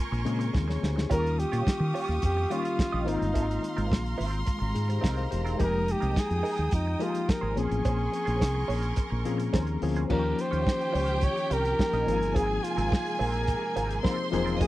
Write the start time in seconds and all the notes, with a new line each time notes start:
Already playing: C#3 G#3 A#3 C4 F4 A#4 G#5 C6 C#6
0.12 A#1, muted clean electric guitar stroke, closed hi-hat
0.25 A#2 C#3 G#3 A#3 C4 G#4, closed hi-hat
0.39 muted clean electric guitar stroke, closed hi-hat
0.53 D#2, muted clean electric guitar stroke, kick, snare
0.68 G#4 C#5, muted clean electric guitar stroke, snare
0.83 D2 G4 C5, snare
0.96 D#4 G#4, muted clean electric guitar stroke, snare
1.09 D#2 D#3 G3 A#3 C#4 F4 G4 A#4 C#5 F5 C#6 D#6, kick, closed hi-hat
1.24 muted clean electric guitar stroke, closed hi-hat
1.39 G4, muted clean electric guitar stroke, closed hi-hat
1.52 A#2 F4 G4 C#5, closed hi-hat
1.67 muted fingered electric bass stroke, kick, snare, closed hi-hat
1.80 D#3, muted clean electric guitar stroke
1.94 F4 G4 C#5, open hi-hat
2.08 D#2, muted clean electric guitar stroke, snare, closed hi-hat
2.22 F2 G4, kick, closed hi-hat
2.37 muted clean electric guitar stroke
2.50 D#3 G3 A#3 C#4 F4 G4 C#5, closed hi-hat
2.65 muted clean electric guitar stroke, closed hi-hat
2.78 muted clean electric guitar stroke, kick, snare, closed hi-hat
2.92 A#1 F4 G4 D#5
3.05 G#1 D#3 G#3 A#3 C4 D#4 F4 A#4 A#5 C6, closed hi-hat
3.21 G1, muted clean electric guitar stroke, closed hi-hat
3.34 G#1 C4 F4 A#4, kick, closed hi-hat
3.47 muted clean electric guitar stroke, closed hi-hat
3.62 muted clean electric guitar stroke, closed hi-hat
3.77 G#1 C4 F4 A#4, closed hi-hat
3.92 A#1, kick, snare, closed hi-hat
4.03 muted clean electric guitar stroke, closed hi-hat
4.18 G#1 C4 F4 C5, open hi-hat
4.32 muted clean electric guitar stroke, closed hi-hat
4.46 muted clean electric guitar stroke, kick, closed hi-hat
4.59 G#1, muted clean electric guitar stroke
4.75 G#2 D#4 G#4, closed hi-hat
4.88 G4 C5, muted clean electric guitar stroke, closed hi-hat
5.01 C2 C4 F4 A#4 D#5, kick, snare, closed hi-hat
5.17 C5 F5, muted clean electric guitar stroke, closed hi-hat
5.31 E1 G4 C5, muted clean electric guitar stroke, closed hi-hat
5.45 C4 D#4 F4 G#4 A#4, closed hi-hat
5.58 F1 F3 G#3 A#3 D#4 G4 G#4 A#4 G5 D#6, kick, closed hi-hat
5.64 A#4
5.72 muted clean electric guitar stroke
5.87 muted clean electric guitar stroke, closed hi-hat
5.92 G4
6.00 C2 D#4 G#4 A#4, closed hi-hat
6.16 G#4, kick, snare, closed hi-hat
6.29 F2, muted clean electric guitar stroke, closed hi-hat
6.43 D#4 G#4 A#4, open hi-hat
6.58 D#2, muted clean electric guitar stroke, closed hi-hat
6.71 F2 D#4, kick, closed hi-hat
6.86 muted clean electric guitar stroke
7.00 F3 G#3 A#3 D#4 F4 G4 G#4 A#4, closed hi-hat
7.13 muted clean electric guitar stroke, closed hi-hat
7.29 A#4, muted clean electric guitar stroke, kick, snare, closed hi-hat
7.41 G#1 D#4 G#4 C5
7.56 A#1 F3 A#3 C4 C#4 G#4 A#4 C5 G#5 C6 C#6, closed hi-hat
7.71 A1, muted clean electric guitar stroke, closed hi-hat
7.85 A#1 C#4 G#4 C5, kick, closed hi-hat
7.99 muted clean electric guitar stroke
8.12 muted clean electric guitar stroke, closed hi-hat
8.25 A#1 C#4 G#4 C5, closed hi-hat
8.41 C2, kick, snare, closed hi-hat
8.54 muted clean electric guitar stroke
8.68 A#1 C#4 G#4 C#5, open hi-hat
8.82 muted clean electric guitar stroke, closed hi-hat
8.96 muted clean electric guitar stroke, kick, closed hi-hat
9.10 A#1, muted clean electric guitar stroke
9.25 A#2 F3 A#3 C4 C#4 G#4, closed hi-hat
9.37 muted clean electric guitar stroke, closed hi-hat
9.53 D#2 C#4 G#4 C5 A#5, kick, snare, closed hi-hat
9.67 muted clean electric guitar stroke, closed hi-hat
9.82 D2 F3 A#3 C4 C#4 G#4, muted clean electric guitar stroke, open hi-hat
9.96 C#4 G#4 C5, closed hi-hat
10.09 D#2 D#3 F3 A#3 C#4 D#4 F4 G4 A#4 C#5 G5, kick, crash
10.24 muted clean electric guitar stroke
10.38 C5, muted clean electric guitar stroke, closed hi-hat
10.51 D#2 F4 G4 C#5, closed hi-hat
10.67 kick, snare
10.79 muted clean electric guitar stroke, closed hi-hat
10.92 C#2 F4 G4 C#5, open hi-hat
11.08 muted clean electric guitar stroke, closed hi-hat
11.21 C#5, kick, closed hi-hat
11.36 muted clean electric guitar stroke, closed hi-hat
11.50 C2 F4 G4 A#4 C#5, closed hi-hat
11.65 muted clean electric guitar stroke, closed hi-hat
11.79 F3 A#3 C#4 D#4 G4, muted clean electric guitar stroke, kick, snare
11.93 A#1 F4 G4 D#5, closed hi-hat
12.06 G#1 C3 F3 G#3 A#3 C4 D#4 F4 G#4 A#4 G#5, closed hi-hat
12.21 G1, muted clean electric guitar stroke, closed hi-hat
12.34 G#1 C4 F4 G#4 A#4, kick, closed hi-hat
12.49 muted clean electric guitar stroke
12.63 F4, muted clean electric guitar stroke, closed hi-hat
12.77 G#1 C4 F4 A#4, closed hi-hat
12.92 kick, snare
13.05 muted clean electric guitar stroke, closed hi-hat
13.19 A#1 C4 F4 A#4 C5, open hi-hat
13.34 muted clean electric guitar stroke, snare, closed hi-hat
13.48 kick, closed hi-hat
13.62 muted clean electric guitar stroke
13.76 G#1 C4 F4 A#4, closed hi-hat
13.90 muted clean electric guitar stroke, closed hi-hat
14.03 F3 A#3 C4 D#4 F4 G#4 A#4 C5 C6, kick, snare
14.18 muted clean electric guitar stroke
14.31 E1 F3 A#3 C4 D#4 G#4, muted clean electric guitar stroke, closed hi-hat
14.45 C4 F4 A#4, closed hi-hat
14.60 F1 D#3 F3 G#3 A#3 D#4 G4 G#4 A#4 D#5 G5 D#6, kick, closed hi-hat